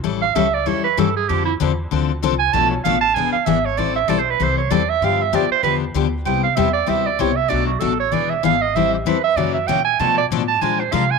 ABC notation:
X:1
M:4/4
L:1/8
Q:"Swing" 1/4=193
K:Am
V:1 name="Clarinet"
z f e d ^c B A ^G | G E z4 z ^g | a ^c f a ^g f e c | d e (3d c B c ^c d e |
f e d c B z3 | g f e d e d ^c e | d ^F A ^c d e =f ^d | e G B e d e g ^g |
a d z a _a c f a |]
V:2 name="Steel-string acoustic guitar"
[E,G,^CEA] z [E,G,CEA] z [E,G,CEA] z [E,G,CEA] z | [D,F,CDA] z [D,F,CDA] z [D,F,CDA] z [D,F,CDA] z | [B,,F,A,DA] z [B,,F,A,DA] z [E,B,D^G] z [E,B,DG] z | [E,G,CEA] z [E,G,CEA] z [E,G,CEA] z [E,G,CEA] z |
[D,F,B,DG] z [D,F,B,DG] z [D,F,B,DG] z [D,F,B,DG] z | [C,G,B,EG] z [C,G,B,EG] z [C,G,B,EG] z [C,G,B,EG] z | [B,,^F,A,D^F] z [B,,F,A,DF] z [E,B,D^G] z [E,B,DG] z | [E,G,CEA] z [E,G,CEA] z [^C,E,^A,^C^F] z [C,E,A,CF] z |
[B,,F,A,DA] z [B,,F,A,DA] z [F,_A,DF_B] z [F,A,DFB] z |]
V:3 name="Upright bass" clef=bass
A,,,2 ^C,,2 E,,2 G,,2 | F,,2 E,,2 D,,2 C,,2 | B,,,2 A,,,2 E,,, z ^G,,,2 | A,,,2 B,,,2 C,,2 E,,2 |
G,,2 F,, z E,,2 D,,2 | C,,2 E,,2 D,,2 C,,2 | B,,,2 A,,,2 E,,,2 ^G,,,2 | A,,,2 E,,2 ^F,,2 ^A,,2 |
B,,2 A,,2 _B,,2 C,2 |]